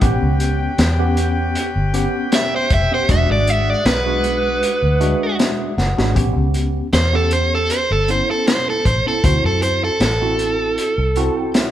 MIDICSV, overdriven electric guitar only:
0, 0, Header, 1, 2, 480
1, 0, Start_track
1, 0, Tempo, 768246
1, 11, Time_signature, 4, 2, 24, 8
1, 7316, End_track
2, 0, Start_track
2, 0, Title_t, "Overdriven electric guitar"
2, 0, Program_c, 0, 29
2, 1469, Note_on_c, 0, 76, 114
2, 1584, Note_off_c, 0, 76, 0
2, 1599, Note_on_c, 0, 72, 88
2, 1697, Note_off_c, 0, 72, 0
2, 1712, Note_on_c, 0, 76, 78
2, 1826, Note_off_c, 0, 76, 0
2, 1839, Note_on_c, 0, 72, 94
2, 1937, Note_off_c, 0, 72, 0
2, 1946, Note_on_c, 0, 76, 90
2, 2063, Note_off_c, 0, 76, 0
2, 2073, Note_on_c, 0, 74, 82
2, 2184, Note_off_c, 0, 74, 0
2, 2184, Note_on_c, 0, 76, 91
2, 2311, Note_off_c, 0, 76, 0
2, 2311, Note_on_c, 0, 74, 92
2, 2413, Note_off_c, 0, 74, 0
2, 2420, Note_on_c, 0, 71, 93
2, 3350, Note_off_c, 0, 71, 0
2, 4340, Note_on_c, 0, 72, 77
2, 4460, Note_off_c, 0, 72, 0
2, 4468, Note_on_c, 0, 69, 78
2, 4571, Note_off_c, 0, 69, 0
2, 4578, Note_on_c, 0, 72, 74
2, 4699, Note_off_c, 0, 72, 0
2, 4715, Note_on_c, 0, 69, 74
2, 4815, Note_off_c, 0, 69, 0
2, 4818, Note_on_c, 0, 72, 86
2, 4938, Note_off_c, 0, 72, 0
2, 4947, Note_on_c, 0, 69, 82
2, 5051, Note_off_c, 0, 69, 0
2, 5064, Note_on_c, 0, 72, 73
2, 5182, Note_off_c, 0, 72, 0
2, 5191, Note_on_c, 0, 69, 75
2, 5293, Note_off_c, 0, 69, 0
2, 5299, Note_on_c, 0, 72, 84
2, 5419, Note_off_c, 0, 72, 0
2, 5435, Note_on_c, 0, 69, 77
2, 5535, Note_off_c, 0, 69, 0
2, 5542, Note_on_c, 0, 72, 68
2, 5660, Note_off_c, 0, 72, 0
2, 5672, Note_on_c, 0, 69, 73
2, 5774, Note_off_c, 0, 69, 0
2, 5780, Note_on_c, 0, 72, 90
2, 5900, Note_off_c, 0, 72, 0
2, 5910, Note_on_c, 0, 69, 73
2, 6012, Note_off_c, 0, 69, 0
2, 6017, Note_on_c, 0, 72, 76
2, 6138, Note_off_c, 0, 72, 0
2, 6150, Note_on_c, 0, 69, 65
2, 6252, Note_off_c, 0, 69, 0
2, 6264, Note_on_c, 0, 69, 80
2, 7192, Note_off_c, 0, 69, 0
2, 7316, End_track
0, 0, End_of_file